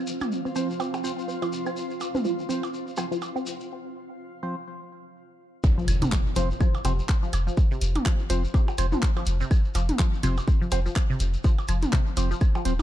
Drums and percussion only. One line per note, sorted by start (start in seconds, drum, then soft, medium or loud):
0.07 shekere medium
0.21 mid tom medium
0.21 percussion blips medium
0.21 claves medium
0.21 shekere soft
0.32 shekere soft
0.46 shekere soft
0.56 shekere medium
0.70 shekere soft
0.80 percussion blips medium
0.80 shekere soft
0.94 percussion blips medium
0.94 shekere soft
1.04 shekere medium
1.19 shekere soft
1.29 shekere soft
1.42 percussion blips medium
1.42 shekere soft
1.53 shekere medium
1.66 claves medium
1.66 shekere soft
1.77 shekere medium
1.90 shekere soft
2.01 percussion blips medium
2.01 shekere medium
2.15 mid tom medium
2.15 shekere soft
2.25 shekere soft
2.39 shekere soft
2.50 shekere medium
2.63 percussion blips medium
2.63 shekere soft
2.74 shekere soft
2.87 shekere soft
2.97 percussion blips medium
2.97 claves medium
2.97 shekere medium
3.12 shekere soft
3.22 percussion blips medium
3.22 shekere soft
3.36 shekere soft
3.46 shekere medium
3.60 shekere soft
5.64 kick loud
5.64 shekere medium
5.79 shekere soft
5.88 closed hi-hat loud
5.88 claves medium
5.88 shekere medium
6.02 closed hi-hat soft
6.02 mid tom medium
6.02 shekere soft
6.12 kick loud
6.12 clap loud
6.12 percussion blips medium
6.12 shekere medium
6.26 shekere soft
6.36 closed hi-hat loud
6.36 shekere loud
6.51 shekere soft
6.61 kick loud
6.61 claves medium
6.61 shekere medium
6.74 percussion blips medium
6.74 shekere soft
6.85 closed hi-hat medium
6.85 percussion blips medium
6.85 shekere medium
6.99 shekere soft
7.09 kick loud
7.09 clap medium
7.09 shekere soft
7.23 shekere soft
7.33 closed hi-hat medium
7.33 percussion blips medium
7.33 claves medium
7.33 shekere medium
7.48 shekere soft
7.57 kick loud
7.57 shekere medium
7.71 shekere soft
7.81 closed hi-hat loud
7.81 shekere loud
7.95 closed hi-hat soft
7.95 mid tom medium
7.95 percussion blips medium
7.95 shekere soft
8.06 kick loud
8.06 clap loud
8.06 claves medium
8.06 shekere soft
8.19 shekere soft
8.30 closed hi-hat loud
8.30 shekere loud
8.44 shekere soft
8.54 kick loud
8.54 percussion blips medium
8.54 shekere soft
8.68 percussion blips medium
8.68 shekere soft
8.78 closed hi-hat loud
8.78 claves medium
8.78 shekere loud
8.92 mid tom medium
8.92 shekere soft
9.02 kick loud
9.02 clap medium
9.02 shekere medium
9.17 percussion blips medium
9.17 shekere soft
9.26 closed hi-hat medium
9.26 shekere medium
9.41 shekere soft
9.51 kick loud
9.51 claves medium
9.51 shekere medium
9.65 shekere soft
9.75 closed hi-hat loud
9.75 percussion blips medium
9.75 shekere medium
9.89 closed hi-hat soft
9.89 mid tom medium
9.89 shekere soft
9.99 kick loud
9.99 clap loud
9.99 shekere medium
10.13 shekere soft
10.23 closed hi-hat medium
10.23 claves medium
10.23 shekere medium
10.37 percussion blips medium
10.37 shekere soft
10.48 kick loud
10.48 shekere medium
10.62 shekere soft
10.72 closed hi-hat loud
10.72 percussion blips medium
10.72 shekere medium
10.86 shekere soft
10.96 kick loud
10.96 clap medium
10.96 percussion blips medium
10.96 claves medium
10.96 shekere medium
11.11 shekere soft
11.20 closed hi-hat loud
11.20 shekere loud
11.34 shekere soft
11.44 kick loud
11.44 shekere medium
11.58 percussion blips medium
11.58 shekere soft
11.68 closed hi-hat loud
11.68 claves medium
11.68 shekere medium
11.82 closed hi-hat soft
11.82 mid tom medium
11.82 shekere soft
11.92 kick loud
11.92 clap medium
11.92 shekere medium
12.07 shekere soft
12.17 closed hi-hat loud
12.17 percussion blips medium
12.17 shekere medium
12.31 shekere soft
12.41 kick loud
12.41 claves medium
12.41 shekere medium
12.55 percussion blips medium
12.55 shekere soft
12.65 closed hi-hat loud
12.65 shekere medium